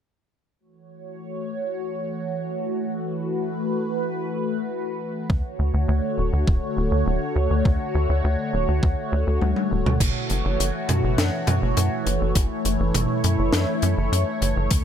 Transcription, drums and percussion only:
5.30 kick
6.48 kick
7.65 kick
8.83 kick
9.41 high tom
9.56 high tom
9.86 mid tom
10.00 kick, closed hi-hat, crash
10.30 closed hi-hat
10.60 closed hi-hat
10.89 closed hi-hat, mid tom
11.18 snare, closed hi-hat
11.47 closed hi-hat, mid tom
11.77 closed hi-hat
12.07 closed hi-hat
12.35 kick, closed hi-hat
12.65 closed hi-hat
12.94 closed hi-hat, mid tom
13.24 closed hi-hat
13.53 snare, closed hi-hat
13.82 closed hi-hat
14.13 closed hi-hat
14.42 closed hi-hat
14.71 kick, closed hi-hat

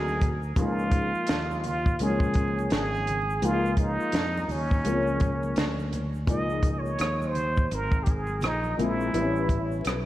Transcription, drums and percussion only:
0.08 high conga, shaker
0.21 kick, closed hi-hat, high conga, low conga, shaker
0.43 shaker
0.56 kick, closed hi-hat, shaker
0.79 shaker
0.91 kick, closed hi-hat, shaker
1.14 shaker
1.27 snare, closed hi-hat, shaker
1.51 high conga, shaker
1.64 closed hi-hat, low conga, shaker
1.86 kick, shaker
1.99 closed hi-hat, high conga, shaker
2.20 kick, shaker
2.34 kick, closed hi-hat, shaker
2.59 high conga, shaker
2.70 snare, closed hi-hat, low conga, shaker
2.95 high conga, shaker
3.07 closed hi-hat, high conga, low conga, shaker
3.30 shaker
3.42 closed hi-hat, shaker
3.66 shaker
3.77 kick, closed hi-hat, shaker
4.00 shaker
4.12 snare, closed hi-hat, shaker
4.37 high conga, shaker
4.49 open hi-hat, low conga, shaker
4.71 kick, shaker
4.85 closed hi-hat, high conga, shaker
5.07 shaker
5.20 kick, closed hi-hat, shaker
5.43 high conga, shaker
5.56 snare, closed hi-hat, low conga, shaker
5.79 high conga, shaker
5.93 closed hi-hat, high conga, low conga, shaker
6.14 shaker
6.27 kick, closed hi-hat, shaker
6.50 shaker
6.63 kick, closed hi-hat, shaker
6.86 shaker
6.99 cross-stick, closed hi-hat, shaker
7.22 high conga, shaker
7.35 closed hi-hat, low conga, shaker
7.57 kick, shaker
7.71 closed hi-hat, high conga, shaker
7.92 kick, shaker
8.06 kick, closed hi-hat, shaker
8.27 high conga, shaker
8.41 cross-stick, closed hi-hat, low conga, shaker
8.64 high conga, shaker
8.79 closed hi-hat, high conga, low conga, shaker
9.00 shaker
9.14 closed hi-hat, shaker
9.36 shaker
9.49 kick, closed hi-hat, shaker
9.72 shaker
9.85 cross-stick, closed hi-hat, shaker

